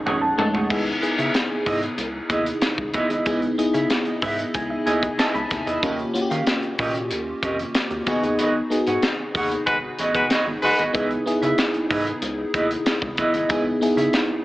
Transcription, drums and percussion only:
0.07 floor tom medium
0.39 floor tom medium
0.55 floor tom medium
0.70 kick loud
0.70 crash medium
0.87 closed hi-hat soft
1.03 closed hi-hat medium
1.19 closed hi-hat soft
1.34 snare loud
1.34 closed hi-hat medium
1.66 kick medium
1.66 open hi-hat medium
1.83 closed hi-hat soft
1.98 closed hi-hat medium
2.30 kick medium
2.30 closed hi-hat medium
2.46 closed hi-hat medium
2.62 snare loud
2.62 closed hi-hat loud
2.78 kick medium
2.94 kick medium
2.94 closed hi-hat medium
3.10 closed hi-hat soft
3.26 kick loud
3.26 closed hi-hat loud
3.42 closed hi-hat soft
3.59 closed hi-hat medium
3.74 closed hi-hat medium
3.90 snare loud
3.90 closed hi-hat medium
4.05 closed hi-hat soft
4.22 kick medium
4.22 open hi-hat medium
4.39 closed hi-hat soft
4.54 kick medium
4.54 closed hi-hat medium
4.87 closed hi-hat medium
5.03 kick medium
5.03 closed hi-hat medium
5.19 snare loud
5.19 closed hi-hat loud
5.35 closed hi-hat soft
5.51 kick medium
5.51 snare soft
5.51 closed hi-hat medium
5.67 closed hi-hat medium
5.83 kick loud
5.83 closed hi-hat medium
5.99 closed hi-hat soft
6.15 closed hi-hat medium
6.31 closed hi-hat soft
6.47 snare loud
6.47 closed hi-hat medium
6.63 closed hi-hat soft
6.79 kick medium
6.79 open hi-hat medium
6.95 closed hi-hat soft
7.11 closed hi-hat medium
7.43 kick medium
7.43 closed hi-hat medium
7.59 closed hi-hat medium
7.75 snare loud
7.75 closed hi-hat loud
7.91 closed hi-hat soft
8.07 kick loud
8.07 snare soft
8.07 closed hi-hat medium
8.23 closed hi-hat soft
8.39 closed hi-hat medium
8.71 closed hi-hat medium
8.87 closed hi-hat soft
9.02 snare loud
9.02 closed hi-hat medium
9.35 kick medium
9.35 open hi-hat medium
9.52 closed hi-hat soft
9.67 kick medium
9.67 closed hi-hat medium
9.99 closed hi-hat medium
10.15 kick medium
10.15 closed hi-hat medium
10.30 snare loud
10.30 closed hi-hat loud
10.62 open hi-hat medium
10.79 closed hi-hat soft
10.95 kick loud
10.95 closed hi-hat loud
11.11 closed hi-hat soft
11.27 closed hi-hat medium
11.43 closed hi-hat soft
11.58 snare loud
11.58 closed hi-hat medium
11.74 closed hi-hat soft
11.90 kick medium
11.90 open hi-hat medium
12.07 closed hi-hat soft
12.22 closed hi-hat medium
12.54 kick medium
12.54 closed hi-hat medium
12.71 closed hi-hat medium
12.86 snare loud
12.86 closed hi-hat medium
13.02 kick medium
13.17 kick medium
13.17 closed hi-hat medium
13.34 closed hi-hat soft
13.50 kick loud
13.50 closed hi-hat loud
13.82 closed hi-hat medium
13.98 closed hi-hat soft
14.13 snare loud
14.13 closed hi-hat medium

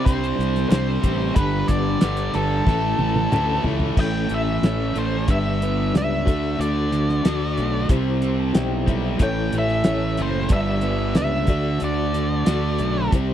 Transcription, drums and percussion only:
0.06 kick loud
0.06 closed hi-hat medium
0.24 closed hi-hat soft
0.41 closed hi-hat medium
0.56 snare soft
0.56 closed hi-hat soft
0.72 snare loud
0.72 clap medium
0.72 closed hi-hat loud
1.03 kick medium
1.03 closed hi-hat medium
1.36 kick loud
1.36 closed hi-hat loud
1.68 kick medium
1.68 closed hi-hat medium
2.01 snare loud
2.01 clap loud
2.01 closed hi-hat loud
2.17 closed hi-hat medium
2.34 closed hi-hat medium
2.67 kick loud
2.67 snare medium
2.99 high tom medium
3.16 high tom medium
3.32 clap medium
3.32 mid tom medium
3.64 floor tom medium
3.80 floor tom medium
3.97 kick loud
3.97 crash loud
4.29 closed hi-hat medium
4.63 snare loud
4.63 closed hi-hat medium
4.96 closed hi-hat medium
5.28 kick loud
5.28 closed hi-hat medium
5.62 closed hi-hat medium
5.95 snare loud
5.95 closed hi-hat medium
6.27 kick loud
6.27 closed hi-hat medium
6.61 closed hi-hat medium
6.92 closed hi-hat medium
7.09 snare soft
7.25 snare loud
7.25 closed hi-hat loud
7.58 closed hi-hat medium
7.89 kick loud
7.89 closed hi-hat loud
8.22 closed hi-hat medium
8.55 snare loud
8.55 closed hi-hat loud
8.88 kick medium
8.88 closed hi-hat medium
9.19 kick loud
9.19 closed hi-hat loud
9.53 closed hi-hat medium
9.68 snare soft
9.84 snare loud
9.84 closed hi-hat medium
10.17 closed hi-hat medium
10.49 kick loud
10.49 closed hi-hat medium
10.81 closed hi-hat medium
11.15 snare loud
11.15 closed hi-hat medium
11.47 kick loud
11.47 closed hi-hat medium
11.80 closed hi-hat medium
12.14 closed hi-hat medium
12.46 snare loud
12.46 closed hi-hat medium
12.78 closed hi-hat medium
13.12 kick loud
13.12 closed hi-hat loud

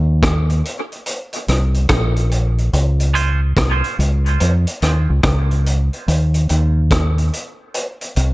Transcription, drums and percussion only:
0.23 kick loud
0.23 cross-stick loud
0.23 closed hi-hat loud
0.50 closed hi-hat soft
0.65 closed hi-hat medium
0.92 closed hi-hat soft
1.06 closed hi-hat medium
1.33 closed hi-hat medium
1.48 cross-stick medium
1.48 closed hi-hat medium
1.74 closed hi-hat soft
1.89 kick loud
1.89 cross-stick loud
1.89 closed hi-hat medium
2.16 closed hi-hat soft
2.31 closed hi-hat medium
2.58 closed hi-hat soft
2.73 closed hi-hat medium
3.00 closed hi-hat medium
3.15 closed hi-hat medium
3.57 kick loud
3.57 cross-stick loud
3.57 closed hi-hat medium
3.84 closed hi-hat soft
4.00 closed hi-hat medium
4.26 closed hi-hat soft
4.40 closed hi-hat medium
4.67 closed hi-hat medium
4.82 cross-stick medium
4.82 closed hi-hat medium
5.23 kick loud
5.23 cross-stick loud
5.23 closed hi-hat medium
5.51 closed hi-hat soft
5.66 closed hi-hat medium
5.93 closed hi-hat soft
6.08 closed hi-hat medium
6.34 closed hi-hat medium
6.49 closed hi-hat medium
6.91 kick loud
6.91 cross-stick loud
6.91 closed hi-hat medium
7.18 closed hi-hat soft
7.33 closed hi-hat medium
7.74 closed hi-hat medium
8.01 closed hi-hat medium
8.16 closed hi-hat medium

